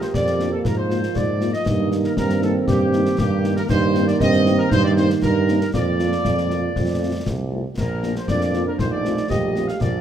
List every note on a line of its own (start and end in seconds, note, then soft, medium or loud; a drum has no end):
0.00 1.63 F3 medium
0.00 1.63 A#3 medium
0.00 0.66 G4 medium
0.00 0.06 C5 medium
0.00 0.08 C5 medium
0.00 snare soft
0.13 0.56 F2 medium
0.13 0.49 D5 medium
0.13 0.50 D5 medium
0.13 concert bass drum medium
0.13 snare medium
0.27 snare soft
0.39 0.49 A#3 soft
0.39 0.48 D4 soft
0.39 0.49 F4 soft
0.39 snare soft
0.52 0.65 A4 medium
0.52 0.58 A4 medium
0.64 1.07 G#2 medium
0.64 1.65 F4 soft
0.64 0.76 A#4 medium
0.64 0.78 A#4 medium
0.64 concert bass drum medium
0.64 snare medium
0.77 1.13 C5 medium
0.90 0.99 A#3 soft
0.90 0.99 F4 soft
0.90 snare soft
1.03 snare soft
1.15 1.53 G#2 medium
1.15 1.54 D5 medium
1.15 concert bass drum medium
1.15 snare medium
1.41 1.50 A#3 soft
1.41 1.50 F4 soft
1.41 snare soft
1.53 1.90 D#5 medium
1.53 snare soft
1.66 2.09 G2 medium
1.66 3.68 D#3 medium
1.66 3.66 A#3 medium
1.66 2.19 D#4 medium
1.66 concert bass drum medium
1.66 snare medium
1.91 2.01 A#3 soft
1.91 2.00 D#4 soft
1.91 snare soft
2.04 2.10 A#4 medium
2.04 2.15 A#4 medium
2.04 snare soft
2.16 2.60 G2 medium
2.16 3.21 C4 medium
2.16 2.28 A#4 medium
2.16 2.41 A#4 medium
2.16 concert bass drum medium
2.16 snare medium
2.30 snare soft
2.42 2.51 A#3 medium
2.42 2.51 D#4 soft
2.42 2.66 A4 medium
2.42 2.54 A4 medium
2.42 snare soft
2.67 3.10 G2 medium
2.67 3.15 G4 medium
2.67 concert bass drum medium
2.67 snare medium
2.93 3.02 A#3 medium
2.93 3.02 D#4 medium
2.93 snare soft
3.06 snare soft
3.18 3.61 G2 medium
3.18 3.69 A#3 medium
3.18 3.54 G4 medium
3.18 3.55 G4 medium
3.18 concert bass drum medium
3.18 snare medium
3.44 3.53 A#3 medium
3.44 3.53 D#4 medium
3.44 snare soft
3.56 3.69 A#4 medium
3.56 3.62 A#4 medium
3.56 snare soft
3.69 4.12 G2 medium
3.69 5.57 D#3 medium
3.69 5.57 A#3 medium
3.69 4.17 D#4 medium
3.69 4.08 C5 medium
3.69 4.05 C5 medium
3.69 concert bass drum medium
3.69 snare medium
3.69 crash soft
3.95 4.04 A#3 medium
3.95 4.04 C4 medium
3.95 4.04 D#4 medium
3.95 snare soft
4.07 4.20 D5 medium
4.07 4.14 D5 medium
4.07 snare soft
4.19 4.63 G2 medium
4.19 4.68 C4 medium
4.19 4.58 D#5 medium
4.19 4.56 D#5 loud
4.19 concert bass drum medium
4.19 snare medium
4.33 snare medium
4.46 4.55 A#3 medium
4.46 4.55 C4 medium
4.46 4.55 D#4 medium
4.46 snare soft
4.58 4.70 A#4 medium
4.58 4.71 A#4 medium
4.69 5.14 G2 medium
4.69 5.69 D#4 medium
4.69 4.83 C5 medium
4.69 4.83 C5 loud
4.69 concert bass drum medium
4.69 snare medium
4.82 4.89 D5 medium
4.82 4.90 D5 medium
4.95 5.06 A#3 medium
4.95 5.06 C4 medium
4.95 5.06 D#4 medium
4.95 5.07 C5 medium
4.95 5.09 C5 medium
4.95 snare soft
5.10 snare medium
5.22 5.65 G2 medium
5.22 5.58 A#4 medium
5.22 concert bass drum medium
5.22 snare medium
5.48 5.57 A#3 medium
5.48 5.57 C4 medium
5.48 5.57 D#4 medium
5.48 snare soft
5.60 5.73 A#4 medium
5.60 5.67 A#4 medium
5.60 snare soft
5.74 6.16 F2 medium
5.74 7.48 F3 medium
5.74 6.72 A#3 medium
5.74 7.48 F4 medium
5.74 7.48 D5 medium
5.74 concert bass drum medium
5.74 snare medium
5.99 6.08 A#3 soft
5.99 6.08 F4 soft
5.99 snare soft
6.12 snare soft
6.25 6.67 F2 medium
6.25 concert bass drum medium
6.25 snare medium
6.38 snare soft
6.50 6.59 A#3 soft
6.50 6.60 F4 soft
6.50 snare soft
6.75 7.18 F2 medium
6.75 7.52 A3 soft
6.75 concert bass drum medium
6.75 snare medium
7.01 7.10 A3 soft
7.01 7.10 C4 soft
7.01 7.10 F4 soft
7.26 7.65 C2 medium
7.26 concert bass drum medium
7.26 snare medium
7.52 7.61 A3 soft
7.52 7.61 C4 soft
7.52 7.61 F4 soft
7.77 8.20 A#1 medium
7.77 9.77 F3 medium
7.77 8.75 A#3 medium
7.77 8.13 A#4 medium
7.77 concert bass drum medium
7.77 snare medium
7.77 crash soft
8.02 8.12 A#3 soft
8.02 8.12 D4 soft
8.02 8.12 F4 soft
8.02 snare soft
8.16 8.21 C5 medium
8.16 8.29 C5 medium
8.16 snare soft
8.28 8.70 F2 medium
8.28 8.80 D4 medium
8.28 8.64 D5 medium
8.28 concert bass drum medium
8.28 snare medium
8.41 snare soft
8.53 8.63 A#3 soft
8.53 8.63 D4 soft
8.53 8.63 F4 soft
8.53 snare soft
8.66 8.72 A#4 medium
8.66 8.78 A#4 medium
8.78 9.21 A#1 soft
8.78 9.81 A3 soft
8.78 9.29 D#4 medium
8.78 8.90 C5 medium
8.78 8.85 C5 medium
8.78 concert bass drum medium
8.78 snare medium
8.92 9.27 D5 medium
9.05 9.14 A3 soft
9.05 9.14 C4 soft
9.05 9.14 F4 soft
9.05 snare soft
9.17 snare soft
9.29 9.72 A#1 medium
9.29 9.82 G4 medium
9.29 9.65 D#5 medium
9.29 concert bass drum medium
9.29 snare medium
9.56 9.65 A3 soft
9.56 9.65 C4 soft
9.56 9.65 F4 soft
9.56 snare soft
9.68 9.73 F5 medium
9.68 9.81 F5 medium
9.68 snare soft
9.80 10.01 A#1 medium
9.80 10.01 F3 medium
9.80 10.01 A#3 medium
9.80 10.01 F4 medium
9.80 10.01 D5 medium
9.80 concert bass drum medium
9.80 snare medium